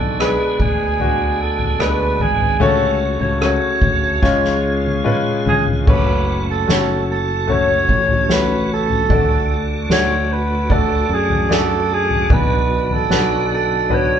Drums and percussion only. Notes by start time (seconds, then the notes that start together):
0.00 floor tom
0.20 cross-stick
0.60 kick, floor tom
1.00 floor tom
1.59 floor tom
1.80 cross-stick
2.20 floor tom
2.40 floor tom
2.60 floor tom
3.21 floor tom
3.42 cross-stick
3.82 kick, floor tom
4.23 kick, snare
4.44 snare
4.85 high tom
5.06 mid tom
5.47 floor tom
5.67 floor tom
5.87 kick, floor tom, crash
6.69 snare
7.49 floor tom
7.89 kick
8.09 floor tom
8.30 snare
8.90 floor tom
9.10 kick, floor tom
9.90 snare
10.69 kick, floor tom
11.30 floor tom
11.51 snare
12.11 floor tom
12.30 kick, floor tom
12.90 floor tom
13.10 snare
13.90 floor tom